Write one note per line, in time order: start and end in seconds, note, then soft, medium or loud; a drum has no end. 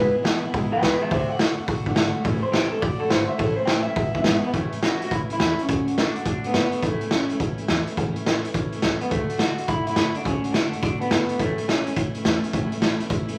0.00 0.12 E1 loud
0.00 0.14 E2 medium
0.00 0.14 B2 medium
0.00 0.15 E3 medium
0.00 0.14 G#3 medium
0.00 0.13 B3 medium
0.00 0.12 E4 medium
0.00 0.14 B4 loud
0.13 0.23 E3 soft
0.13 0.23 G#3 soft
0.13 0.24 B3 soft
0.13 0.24 E4 medium
0.13 muted upright bass stroke medium
0.23 0.40 G#1 loud
0.23 0.42 E2 loud
0.23 0.43 B2 loud
0.23 0.43 E3 medium
0.23 0.43 G#3 loud
0.23 0.42 B3 medium
0.23 0.41 E4 loud
0.23 snare loud
0.23 open hi-hat medium
0.42 0.52 G#1 loud
0.42 0.50 E3 medium
0.42 0.52 G#3 medium
0.42 0.53 B3 medium
0.42 0.53 E4 medium
0.52 0.69 G#1 loud
0.52 0.71 E3 medium
0.52 0.72 G#3 medium
0.52 0.71 B3 medium
0.52 0.70 E4 medium
0.52 kick loud
0.52 open hi-hat medium
0.71 0.81 B1 medium
0.71 0.80 E3 medium
0.71 0.81 G#3 soft
0.71 0.81 B3 medium
0.71 0.82 E4 medium
0.71 0.82 B4 medium
0.71 0.82 G5 loud
0.80 0.98 C#2 medium
0.80 1.00 E2 medium
0.80 1.00 B2 medium
0.80 1.00 E3 medium
0.80 1.01 G#3 medium
0.80 1.00 B3 medium
0.80 0.98 E4 loud
0.80 1.00 B4 medium
0.80 1.01 G5 medium
0.80 snare loud
0.80 open hi-hat medium
1.00 1.09 E3 medium
1.00 1.10 G#3 medium
1.00 1.11 B3 soft
1.00 1.10 E4 medium
1.00 1.10 G#4 medium
1.00 1.11 E5 loud
1.00 muted upright bass stroke medium
1.10 1.26 D2 loud
1.10 1.29 D3 medium
1.10 1.29 A3 medium
1.10 1.29 D4 medium
1.10 1.27 F#4 medium
1.10 1.28 C5 medium
1.10 1.29 E5 medium
1.10 kick loud
1.10 open hi-hat medium
1.28 1.38 A3 soft
1.28 1.39 D4 soft
1.28 1.39 F#4 medium
1.28 1.85 F#5 loud
1.28 muted upright bass stroke medium
1.38 1.55 F#2 medium
1.38 1.57 D3 medium
1.38 1.58 A3 medium
1.38 1.57 D4 medium
1.38 1.55 F#4 medium
1.38 snare loud
1.38 open hi-hat medium
1.56 1.67 F#2 loud
1.56 1.66 A3 soft
1.56 1.68 D4 medium
1.56 1.67 F#4 medium
1.67 1.86 D3 medium
1.67 1.86 A3 medium
1.67 1.85 D4 medium
1.67 1.83 F#4 medium
1.67 kick loud
1.67 open hi-hat medium
1.85 1.94 A3 medium
1.85 1.95 D4 medium
1.85 1.96 F#4 medium
1.85 kick medium
1.95 2.12 G#1 medium
1.95 2.14 D3 loud
1.95 2.15 A3 loud
1.95 2.14 D4 loud
1.95 2.12 F#4 loud
1.95 snare loud
1.95 open hi-hat medium
2.13 2.24 A3 medium
2.13 2.25 D4 medium
2.13 2.24 F#4 medium
2.13 muted upright bass stroke medium
2.24 2.40 A1 loud
2.24 2.43 A2 medium
2.24 2.43 E3 medium
2.24 2.44 A3 medium
2.24 2.42 C#4 medium
2.24 2.40 E4 loud
2.24 kick loud
2.24 open hi-hat medium
2.42 2.52 A3 soft
2.42 2.53 C#4 medium
2.42 2.53 E4 medium
2.42 2.53 C5 loud
2.42 muted upright bass stroke medium
2.52 2.70 C#2 medium
2.52 2.71 A2 medium
2.52 2.72 E3 medium
2.52 2.72 A3 medium
2.52 2.71 C#4 medium
2.52 2.70 E4 medium
2.52 2.71 G4 medium
2.52 snare loud
2.52 open hi-hat medium
2.71 2.81 C#2 loud
2.71 2.81 A3 soft
2.71 2.82 C#4 medium
2.71 2.82 E4 medium
2.71 2.82 A4 medium
2.80 2.98 D2 loud
2.80 3.00 D3 medium
2.80 2.99 D4 medium
2.80 2.97 F#4 medium
2.80 3.00 D5 medium
2.80 kick loud
2.80 open hi-hat medium
2.98 3.09 A2 medium
2.98 3.08 A3 soft
2.98 3.09 D4 medium
2.98 3.10 F#4 medium
2.98 3.10 A4 medium
3.09 3.26 G#1 medium
3.09 3.28 D3 medium
3.09 3.29 A3 medium
3.09 3.28 D4 medium
3.09 3.26 F#4 medium
3.09 3.28 C5 medium
3.09 snare loud
3.09 open hi-hat medium
3.27 3.38 A3 soft
3.27 3.39 D4 medium
3.27 3.38 F#4 medium
3.27 3.39 E5 loud
3.27 muted upright bass stroke medium
3.37 3.55 A1 loud
3.37 3.57 A2 medium
3.37 3.57 E3 medium
3.37 3.58 A3 medium
3.37 3.57 C#4 medium
3.37 3.55 E4 medium
3.37 3.56 A4 medium
3.37 kick loud
3.37 open hi-hat medium
3.56 3.67 A3 soft
3.56 3.68 C#4 soft
3.56 3.67 E4 medium
3.56 3.67 C5 loud
3.56 muted upright bass stroke medium
3.66 3.84 C#2 loud
3.66 3.86 A2 medium
3.66 3.86 E3 medium
3.66 3.87 A3 medium
3.66 3.86 C#4 medium
3.66 3.82 G5 loud
3.66 snare loud
3.66 open hi-hat medium
3.70 3.84 E4 loud
3.83 3.96 E4 medium
3.83 4.50 E5 loud
3.87 3.95 C#2 loud
3.87 3.97 A3 soft
3.87 3.97 C#4 medium
3.96 4.12 E1 loud
3.96 4.15 E3 medium
3.96 4.15 G#3 medium
3.96 4.14 B3 medium
3.96 4.13 E4 medium
3.96 kick loud
3.96 open hi-hat medium
4.14 4.23 B1 medium
4.14 4.24 E3 medium
4.14 4.24 G#3 medium
4.14 4.25 B3 medium
4.14 4.25 E4 medium
4.14 kick medium
4.24 4.41 G#1 loud
4.24 4.43 E2 loud
4.24 4.43 B2 medium
4.24 4.44 E3 loud
4.24 4.43 G#3 medium
4.24 4.42 B3 loud
4.24 4.41 E4 loud
4.24 snare loud
4.24 open hi-hat medium
4.42 4.52 E3 medium
4.42 4.53 G#3 soft
4.42 4.53 B3 medium
4.42 4.49 B3 medium
4.42 4.53 E4 medium
4.42 muted upright bass stroke medium
4.52 4.69 A1 medium
4.52 4.71 A2 medium
4.52 4.72 E3 medium
4.52 4.83 A3 medium
4.52 4.72 A3 medium
4.52 4.71 C#4 medium
4.52 4.69 E4 medium
4.52 kick loud
4.52 closed hi-hat medium
4.70 4.81 A3 soft
4.70 4.82 C#4 soft
4.70 4.81 E4 soft
4.70 muted upright bass stroke medium
4.70 closed hi-hat medium
4.81 4.98 C#2 medium
4.81 5.00 A2 medium
4.81 5.01 E3 medium
4.81 5.01 A3 medium
4.81 5.00 C#4 medium
4.81 4.98 E4 medium
4.81 5.02 F#4 loud
4.81 snare loud
4.81 closed hi-hat medium
4.99 5.10 C#2 medium
4.99 5.09 A3 soft
4.99 5.10 C#4 soft
4.99 5.10 E4 medium
4.99 closed hi-hat medium
5.04 5.13 F#4 loud
5.09 5.27 C#2 medium
5.09 5.29 E3 medium
5.09 5.29 A3 medium
5.09 5.28 C#4 medium
5.09 5.27 E4 medium
5.09 5.18 E4 medium
5.09 kick loud
5.09 closed hi-hat medium
5.28 5.38 E2 medium
5.28 5.37 A3 soft
5.28 5.38 C#4 medium
5.28 5.39 E4 medium
5.28 closed hi-hat medium
5.33 5.61 E4 loud
5.37 5.56 E2 medium
5.37 5.57 A2 medium
5.37 5.57 E3 medium
5.37 5.58 A3 medium
5.37 5.57 C#4 medium
5.37 5.55 E4 medium
5.37 snare loud
5.37 closed hi-hat medium
5.57 5.67 A3 soft
5.57 5.68 C#4 soft
5.57 5.68 E4 medium
5.57 muted upright bass stroke medium
5.57 closed hi-hat medium
5.62 6.00 C#4 medium
5.68 5.84 D2 medium
5.68 5.87 D3 medium
5.68 5.87 A3 medium
5.68 5.87 D4 medium
5.68 5.86 F#4 medium
5.68 kick loud
5.68 closed hi-hat medium
5.87 5.96 A3 soft
5.87 5.97 D4 soft
5.87 5.97 F#4 medium
5.87 muted upright bass stroke medium
5.87 closed hi-hat medium
5.96 6.12 F#2 medium
5.96 6.16 D3 medium
5.96 6.16 A3 medium
5.96 6.15 D4 medium
5.96 6.27 D4 medium
5.96 6.13 F#4 loud
5.96 snare loud
5.96 closed hi-hat medium
6.14 6.23 F#2 medium
6.14 6.26 D4 medium
6.14 6.25 F#4 medium
6.14 closed hi-hat medium
6.18 6.25 A3 soft
6.25 6.44 D3 medium
6.25 6.45 A3 medium
6.25 6.45 D4 medium
6.25 6.46 D4 medium
6.25 6.43 F#4 medium
6.25 kick loud
6.25 closed hi-hat medium
6.44 6.52 A2 medium
6.44 6.54 A3 medium
6.44 6.85 B3 medium
6.44 6.54 D4 medium
6.44 6.54 F#4 medium
6.44 closed hi-hat medium
6.53 6.69 A2 medium
6.53 6.72 D3 medium
6.53 6.73 A3 medium
6.53 6.73 D4 medium
6.53 6.71 F#4 medium
6.53 snare loud
6.53 closed hi-hat medium
6.72 6.82 A3 soft
6.72 6.84 D4 soft
6.72 6.83 F#4 medium
6.72 muted upright bass stroke medium
6.72 closed hi-hat medium
6.82 6.98 A1 loud
6.82 7.01 A2 medium
6.82 7.02 E3 medium
6.82 7.02 A3 medium
6.82 7.13 A3 medium
6.82 7.01 C#4 medium
6.82 6.99 E4 medium
6.82 kick loud
6.82 closed hi-hat medium
7.01 7.10 A3 soft
7.01 7.11 C#4 soft
7.01 7.11 E4 medium
7.01 muted upright bass stroke medium
7.01 closed hi-hat medium
7.10 7.27 C#2 medium
7.10 7.30 A2 medium
7.10 7.30 E3 medium
7.10 7.30 A3 medium
7.10 7.38 C#4 medium
7.10 7.30 C#4 medium
7.10 7.28 E4 medium
7.10 snare loud
7.10 closed hi-hat medium
7.29 7.38 C#2 loud
7.29 7.39 A3 soft
7.29 7.41 C#4 medium
7.29 7.40 E4 medium
7.29 closed hi-hat medium
7.39 7.55 C#2 loud
7.39 7.58 E3 medium
7.39 7.59 A3 medium
7.39 7.59 C#4 medium
7.39 7.56 E4 medium
7.39 kick loud
7.39 closed hi-hat medium
7.58 7.67 E2 medium
7.58 7.68 A3 medium
7.58 7.68 C#4 medium
7.58 7.68 E4 medium
7.58 closed hi-hat medium
7.68 7.84 E2 medium
7.68 7.87 A2 medium
7.68 7.87 E3 medium
7.68 7.87 A3 medium
7.68 7.86 C#4 medium
7.68 7.85 E4 loud
7.68 snare loud
7.68 closed hi-hat medium
7.86 7.96 A3 soft
7.86 7.96 C#4 medium
7.86 7.97 E4 medium
7.86 muted upright bass stroke medium
7.86 closed hi-hat medium
7.96 8.12 A1 medium
7.96 8.15 A2 medium
7.96 8.16 E3 medium
7.96 8.16 A3 medium
7.96 8.15 C#4 medium
7.96 8.13 E4 medium
7.96 kick loud
7.96 closed hi-hat medium
8.14 8.26 A3 medium
8.14 8.26 C#4 medium
8.14 8.25 E4 medium
8.14 muted upright bass stroke medium
8.14 closed hi-hat medium
8.26 8.42 C#2 medium
8.26 8.44 A2 medium
8.26 8.45 E3 medium
8.26 8.45 A3 medium
8.26 8.45 C#4 medium
8.26 8.43 E4 loud
8.26 snare loud
8.26 closed hi-hat medium
8.44 8.52 C#2 medium
8.44 8.54 A3 medium
8.44 8.55 C#4 medium
8.44 8.54 E4 medium
8.44 closed hi-hat medium
8.54 8.72 E3 medium
8.54 8.73 A3 medium
8.54 8.73 C#4 medium
8.54 8.71 E4 medium
8.54 kick loud
8.54 closed hi-hat medium
8.72 8.82 E2 medium
8.72 8.82 A3 medium
8.72 8.83 C#4 medium
8.72 8.82 E4 medium
8.72 closed hi-hat medium
8.82 8.98 C#2 medium
8.82 9.01 A2 medium
8.82 9.01 E3 loud
8.82 9.01 A3 medium
8.82 9.00 C#4 medium
8.82 8.98 E4 loud
8.82 snare loud
8.82 closed hi-hat medium
8.99 9.10 A3 soft
8.99 9.11 B3 medium
8.99 9.11 C#4 soft
8.99 9.10 E4 soft
8.99 muted upright bass stroke medium
8.99 closed hi-hat medium
9.10 9.27 D2 medium
9.10 9.29 D3 medium
9.10 9.37 A3 medium
9.10 9.30 A3 medium
9.10 9.29 D4 medium
9.10 9.27 F#4 medium
9.10 kick loud
9.10 closed hi-hat medium
9.28 9.38 A3 soft
9.28 9.38 D4 soft
9.28 9.39 F#4 medium
9.28 closed hi-hat medium
9.38 9.55 F#2 medium
9.38 9.57 D3 medium
9.38 9.58 A3 medium
9.38 9.57 D4 medium
9.38 9.68 F#4 loud
9.38 9.56 F#4 medium
9.38 snare loud
9.38 closed hi-hat medium
9.57 9.66 F#2 medium
9.57 9.68 A3 soft
9.57 9.68 D4 medium
9.57 9.68 F#4 medium
9.57 closed hi-hat medium
9.67 9.84 F#2 loud
9.67 9.86 D3 medium
9.67 9.87 A3 medium
9.67 9.86 D4 medium
9.67 9.85 E4 medium
9.67 9.84 F#4 medium
9.67 kick loud
9.67 closed hi-hat medium
9.85 9.95 A2 medium
9.85 9.96 A3 soft
9.85 9.96 D4 medium
9.85 10.13 E4 loud
9.85 9.96 F#4 medium
9.85 closed hi-hat medium
9.96 10.12 A2 medium
9.96 10.15 D3 medium
9.96 10.15 A3 medium
9.96 10.15 D4 medium
9.96 10.14 F#4 medium
9.96 snare loud
9.96 closed hi-hat medium
10.15 10.23 A3 soft
10.15 10.25 D4 medium
10.15 10.24 D4 soft
10.15 10.25 F#4 medium
10.15 muted upright bass stroke medium
10.15 closed hi-hat medium
10.24 10.41 D2 loud
10.24 10.43 D3 medium
10.24 10.43 A3 medium
10.24 10.52 C#4 loud
10.24 10.44 D4 medium
10.24 10.42 F#4 medium
10.24 kick loud
10.24 closed hi-hat medium
10.43 10.53 A3 soft
10.43 10.54 D4 soft
10.43 10.53 F#4 medium
10.43 muted upright bass stroke medium
10.43 closed hi-hat medium
10.52 10.72 D3 medium
10.52 10.72 A3 medium
10.52 10.81 D4 loud
10.52 10.73 D4 medium
10.52 10.71 F#4 medium
10.52 snare loud
10.52 closed hi-hat medium
10.72 10.81 F#2 medium
10.72 10.82 A3 soft
10.72 10.83 D4 medium
10.72 10.82 F#4 medium
10.72 closed hi-hat medium
10.82 11.01 D3 medium
10.82 11.01 A3 medium
10.82 11.00 D4 medium
10.82 11.02 D4 medium
10.82 11.00 F#4 medium
10.82 kick loud
10.82 closed hi-hat medium
11.01 11.09 A2 medium
11.01 11.11 A3 soft
11.01 11.40 B3 medium
11.01 11.11 D4 soft
11.01 11.11 F#4 medium
11.01 closed hi-hat medium
11.11 11.26 A2 medium
11.11 11.29 D3 medium
11.11 11.30 A3 medium
11.11 11.30 D4 medium
11.11 11.27 F#4 medium
11.11 snare loud
11.11 closed hi-hat medium
11.29 11.39 A3 soft
11.29 11.40 D4 soft
11.29 11.39 F#4 medium
11.29 muted upright bass stroke medium
11.29 closed hi-hat medium
11.39 11.55 A1 medium
11.39 11.58 A2 medium
11.39 11.58 E3 medium
11.39 11.66 A3 medium
11.39 11.58 A3 medium
11.39 11.59 C#4 medium
11.39 11.56 E4 medium
11.39 kick loud
11.39 closed hi-hat medium
11.57 11.67 A3 soft
11.57 11.67 C#4 soft
11.57 11.68 E4 medium
11.57 muted upright bass stroke medium
11.57 closed hi-hat medium
11.67 11.84 C#2 medium
11.67 11.86 A2 medium
11.67 11.86 E3 medium
11.67 11.86 A3 medium
11.67 11.95 C#4 medium
11.67 11.86 C#4 medium
11.67 11.84 E4 medium
11.67 snare loud
11.67 closed hi-hat medium
11.86 11.95 C#2 medium
11.86 11.96 A3 soft
11.86 11.97 C#4 medium
11.86 11.96 E4 medium
11.86 closed hi-hat medium
11.96 12.14 E3 medium
11.96 12.15 A3 medium
11.96 12.14 C#4 medium
11.96 12.12 E4 medium
11.96 kick loud
11.96 closed hi-hat loud
12.13 12.23 E2 medium
12.13 12.24 A3 soft
12.13 12.24 C#4 medium
12.13 12.24 E4 medium
12.13 closed hi-hat medium
12.24 12.40 E2 medium
12.24 12.43 A2 medium
12.24 12.43 E3 medium
12.24 12.43 A3 loud
12.24 12.43 C#4 loud
12.24 12.40 E4 loud
12.24 snare loud
12.24 closed hi-hat medium
12.42 12.52 A3 soft
12.42 12.53 C#4 medium
12.42 12.52 E4 medium
12.42 muted upright bass stroke medium
12.42 closed hi-hat medium
12.52 12.69 A1 loud
12.52 12.71 A2 medium
12.52 12.71 E3 medium
12.52 12.72 A3 loud
12.52 12.71 C#4 medium
12.52 12.69 E4 medium
12.52 kick loud
12.52 closed hi-hat medium
12.70 12.81 A3 soft
12.70 12.81 C#4 soft
12.70 12.81 E4 medium
12.70 muted upright bass stroke medium
12.70 closed hi-hat medium
12.80 12.97 C#2 medium
12.80 12.99 A2 medium
12.80 13.00 E3 medium
12.80 13.00 A3 medium
12.80 13.00 C#4 medium
12.80 12.98 E4 loud
12.80 snare loud
12.80 closed hi-hat medium
12.99 13.09 C#2 medium
12.99 13.09 A3 soft
12.99 13.10 C#4 medium
12.99 13.10 E4 medium
12.99 closed hi-hat medium
13.08 13.25 C#2 medium
13.08 13.28 E3 medium
13.08 13.29 A3 medium
13.08 13.28 C#4 medium
13.08 13.26 E4 medium
13.08 kick loud
13.08 closed hi-hat medium
13.27 13.37 E2 medium
13.27 13.38 A3 soft
13.27 13.38 C#4 medium
13.27 13.38 E4 medium
13.27 closed hi-hat medium